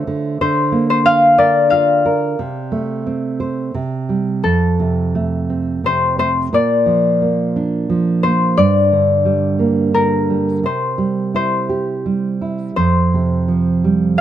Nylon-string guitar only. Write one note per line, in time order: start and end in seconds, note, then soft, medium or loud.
0.00 0.38 A3 medium
0.00 0.37 F4 medium
0.07 0.39 D3 soft
0.41 2.35 D3 medium
0.72 2.00 A#3 medium
1.05 1.72 D4 soft
1.39 2.04 A#4 medium
1.72 2.37 F4 medium
2.05 2.38 A#4 medium
2.39 3.71 C3 medium
2.72 3.71 A3 soft
3.07 3.73 C4 soft
3.40 3.73 C5 medium
3.74 4.42 C3 medium
4.09 4.43 G3 soft
4.44 6.48 F2 soft
4.79 5.83 C3 soft
5.15 6.17 A3 soft
5.49 6.50 C4 soft
5.84 6.51 C3 soft
6.18 6.51 A3 soft
6.53 8.54 A#2 medium
6.86 7.88 F3 soft
7.22 8.23 A#3 soft
7.56 8.55 D4 soft
7.90 8.56 F3 medium
8.24 8.57 A#3 soft
8.58 10.61 G2 medium
8.92 9.93 D3 soft
9.25 10.29 G3 soft
9.59 10.61 A#3 soft
9.94 10.62 D3 soft
10.30 10.64 G3 soft
10.63 12.72 C3 medium
10.98 12.05 G3 soft
11.34 12.40 E4 soft
11.69 12.73 G4 soft
12.06 12.74 G3 soft
12.41 12.76 E4 soft
12.77 14.21 F2 medium
13.14 14.19 C3 soft
13.48 14.21 F3 soft
13.84 14.21 G3 soft